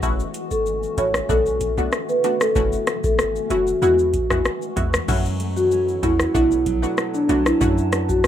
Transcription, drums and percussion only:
0.03 kick, shaker
0.20 shaker
0.34 closed hi-hat, shaker
0.51 shaker
0.66 shaker
0.83 shaker
0.98 kick, closed hi-hat, shaker
1.14 cross-stick, shaker
1.29 kick, shaker
1.46 shaker
1.61 kick, closed hi-hat, shaker
1.78 shaker
1.92 cross-stick, shaker
2.09 shaker
2.24 closed hi-hat, shaker
2.41 cross-stick, shaker
2.56 kick, shaker
2.72 shaker
2.87 cross-stick, closed hi-hat, shaker
3.04 kick, shaker
3.19 cross-stick, shaker
3.36 shaker
3.50 closed hi-hat, shaker
3.67 shaker
3.82 shaker
3.99 shaker
4.14 kick, closed hi-hat, shaker
4.30 kick, cross-stick, shaker
4.45 cross-stick, shaker
4.62 shaker
4.77 kick, closed hi-hat, shaker
4.94 cross-stick, shaker
5.08 kick, crash, shaker
5.25 shaker
5.40 closed hi-hat, shaker
5.57 shaker
5.71 shaker
5.88 shaker
6.03 kick, closed hi-hat, shaker
6.19 cross-stick, shaker
6.35 kick, shaker
6.51 shaker
6.66 kick, closed hi-hat, shaker
6.83 shaker
6.98 cross-stick, shaker
7.14 shaker
7.29 closed hi-hat, shaker
7.46 cross-stick, shaker
7.61 kick, shaker
7.78 shaker
7.92 cross-stick, closed hi-hat, shaker
8.09 kick, shaker
8.24 cross-stick, shaker

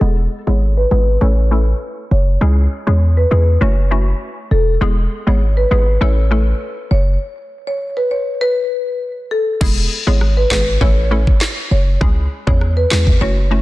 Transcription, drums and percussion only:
9.61 kick, crash
10.21 cross-stick
10.51 kick, snare, clap
10.81 kick
11.27 kick
11.41 snare, clap
12.01 kick
12.47 kick
12.61 cross-stick
12.91 snare, clap
13.07 kick

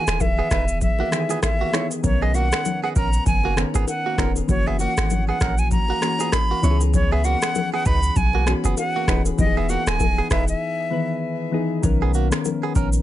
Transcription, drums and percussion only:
0.07 finger snap, cross-stick, shaker
0.20 kick, high bongo, low conga, shaker
0.51 finger snap, kick, cross-stick, shaker
0.68 shaker
0.81 kick, low conga, shaker
0.99 high bongo
1.12 finger snap, cross-stick, shaker
1.29 low bongo, shaker
1.43 finger snap, kick, cross-stick, high bongo, shaker
1.73 finger snap, cross-stick, low bongo, shaker
1.91 high bongo, shaker
2.04 kick, low conga, shaker
2.34 low bongo, shaker
2.52 finger snap, cross-stick, shaker
2.65 high bongo, low conga, shaker
2.96 kick, shaker
3.13 shaker
3.26 kick, low conga, shaker
3.43 high bongo
3.57 finger snap, cross-stick, shaker
3.74 low bongo, shaker
3.88 high bongo, shaker
4.18 finger snap, kick, cross-stick, low bongo, shaker
4.36 high bongo, shaker
4.49 kick, low conga, shaker
4.79 low bongo, shaker
4.97 finger snap, cross-stick, shaker
5.10 high bongo, low conga, shaker
5.41 finger snap, kick, cross-stick, shaker
5.58 shaker
5.71 kick, low conga, shaker
5.88 high bongo
6.02 finger snap, cross-stick, shaker
6.19 low bongo, shaker
6.32 finger snap, kick, cross-stick, high bongo, shaker
6.63 low bongo, shaker
6.81 high bongo, shaker
6.94 kick, low conga, shaker
7.24 low bongo, shaker
7.42 finger snap, cross-stick, shaker
7.55 high bongo, low conga, shaker
7.86 kick, shaker
8.03 shaker
8.16 kick, low conga, shaker
8.33 high bongo
8.47 finger snap, cross-stick, shaker
8.64 low bongo, shaker
8.77 high bongo, shaker
9.08 finger snap, kick, cross-stick, low bongo, shaker
9.26 high bongo, shaker
9.39 kick, low conga, shaker
9.69 low bongo, shaker
9.87 finger snap, cross-stick, shaker
10.00 kick, high bongo, low conga, shaker
10.31 finger snap, kick, cross-stick, shaker
10.48 shaker
11.84 kick, low conga, shaker
12.14 shaker
12.32 finger snap, cross-stick, shaker
12.45 high bongo, low conga, shaker
12.75 kick, shaker
12.93 shaker

